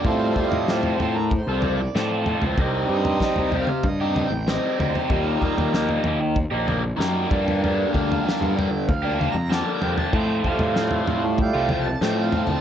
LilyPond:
<<
  \new Staff \with { instrumentName = "Harmonium" } { \time 4/4 \key f \mixolydian \tempo 4 = 95 \tuplet 3/2 { c''4 ees''8 d''8 c''8 bes'8 c''8 d''4~ } d''8 r8 | r8 ees''4 f''8 \tuplet 3/2 { ees''4 g''8 ees''8 d''8 c''8 } | \tuplet 3/2 { bes'8 bes'4~ } bes'8 r2 r8 | r8 f''4 g''8 \tuplet 3/2 { f''4 bes''8 a''8 g''8 a''8 } |
\tuplet 3/2 { g''8 f''4~ } f''8 r8 \tuplet 3/2 { g''4 a''8 g''8 f''8 a''8 } | }
  \new Staff \with { instrumentName = "Harmonium" } { \time 4/4 \key f \mixolydian <g a f'>4. r2 r8 | <g c' ees'>4. r2 r8 | <g ees' f'>4. r2 <bes f'>8 | r1 |
r8 <g a f'>4. <g a f'>8 r4. | }
  \new Staff \with { instrumentName = "Overdriven electric guitar" } { \time 4/4 \key f \mixolydian <a, f c' f' a'>8 <f c' f' a'>8 <a, f c' f' a'>8 <f c' f' a'>8. <c' f' a'>16 <f c' f' a'>8 <a, f c' f' a'>8 <f c' f' a'>16 <c' f' a'>16 | <c g c' ees' g'>8 <g c' ees' g'>8 <c g c' ees' g'>8 <g c' ees' g'>8. <c' ees' g'>16 <g c' ees' g'>8 <c g c' ees' g'>8 <g c' ees' g'>16 <c' ees' g'>16 | <ees g bes ees' g'>8 <g bes ees' g'>8 <ees g bes ees' g'>8 <g bes ees' g'>8. <bes ees' g'>16 <g bes ees' g'>8 <ees g bes ees' g'>8 <g, d g bes d' g'>16 <g bes d' g'>16 | <g, d g bes d' g'>8 <g bes d' g'>8 <g, d g bes d' g'>8 <g bes d' g'>8. <g bes d' g'>16 <g bes d' g'>8 <g, d g bes d' g'>8 <g bes d' g'>16 <g bes d' g'>16 |
<a, f a c' f'>8 <f a c' f'>8 <a, f a c' f'>8 <f a c' f'>8. <a c' f'>16 <f a c' f'>8 <a, f a c' f'>8 <f a c' f'>16 <a c' f'>16 | }
  \new Staff \with { instrumentName = "Picked electric bass" } { \clef bass \time 4/4 \key f \mixolydian a,8 r16 a,8. a,8. c,8. a,8. des,16 | c,8 g,8 r16 c,8 r16 g,8. a,,8 r16 d,16 r16 | ees,8 r16 ees,8. ees,8. bes,,8. fis,8 g,8~ | g,8 d,8 r16 g,8 r16 d,8. f,8 r16 f,16 r16 |
a,8 r16 a,8. a,8. c,8. a,8. d,16 | }
  \new DrumStaff \with { instrumentName = "Drums" } \drummode { \time 4/4 <bd tomfh>8 <bd tomfh>16 tomfh16 sn16 tomfh16 tomfh8 <bd tomfh>8 <tomfh toml>8 sn8 tomfh16 tomfh16 | <bd tomfh>8. tomfh16 <bd sn>16 tomfh16 tomfh16 toml16 <bd tomfh toml>8 <tomfh toml>8 sn8 <tomfh toml>16 tomfh16 | <bd tomfh>8 <bd tomfh>16 tomfh16 sn16 tomfh16 tomfh8 <bd tomfh>8 <tomfh toml>8 sn8 <bd tomfh>16 tomfh16 | tomfh8 <bd tomfh>16 tomfh16 sn16 tomfh16 tomfh8 <bd tomfh>8 <tomfh toml>8 sn8 tomfh16 tomfh16 |
<bd tomfh>8 <bd tomfh>16 tomfh16 sn16 tomfh16 tomfh8 <bd tomfh>8 <tomfh toml>8 sn8 tomfh16 tomfh16 | }
>>